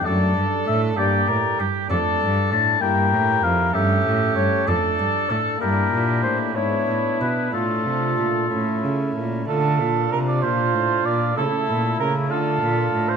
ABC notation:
X:1
M:6/8
L:1/16
Q:3/8=64
K:Dm
V:1 name="Oboe"
d4 e2 d4 z2 | d4 a2 g4 f2 | e4 ^c2 d4 A2 | B4 c2 ^c4 =B2 |
A8- A2 z2 | z6 F6 | E6 F6 |]
V:2 name="Oboe"
A6 G2 B2 G2 | A4 z2 B6 | G6 A6 | G6 E6 |
F8- F z3 | A4 B d c4 d2 | A4 B2 A4- A c |]
V:3 name="Pipe organ"
[A,DA]6 [B,DG]6 | [A,DA]6 [B,EG]6 | [A,^CA]6 [A,DA]6 | [B,DE]6 [=B,DE]6 |
[A,DF]6 [A,^CE]6 | [A,DF]12 | [A,E]6 [A,DF]6 |]
V:4 name="Pipe organ" clef=bass
^F,,2 G,,2 A,,2 G,,2 A,,2 G,,2 | F,,2 G,,2 A,,2 G,,2 A,,2 F,,2 | G,,2 A,,2 G,,2 F,,2 G,,2 A,,2 | G,,2 B,,2 A,,2 ^G,,2 A,,2 =B,,2 |
A,,2 C,2 B,,2 A,,2 ^C,2 B,,2 | D,2 B,,2 C,2 B,,2 A,,2 B,,2 | ^C,2 B,,2 C,2 D,2 B,,2 A,,2 |]
V:5 name="Cello" clef=bass
^F,,2 G,,2 A,,2 G,,2 A,,2 G,,2 | F,,2 G,,2 A,,2 G,,2 A,,2 F,,2 | G,,2 A,,2 G,,2 F,,2 G,,2 A,,2 | G,,2 B,,2 A,,2 ^G,,2 A,,2 =B,,2 |
A,,2 C,2 B,,2 A,,2 ^C,2 B,,2 | D,2 B,,2 C,2 B,,2 A,,2 B,,2 | ^C,2 B,,2 C,2 D,2 B,,2 A,,2 |]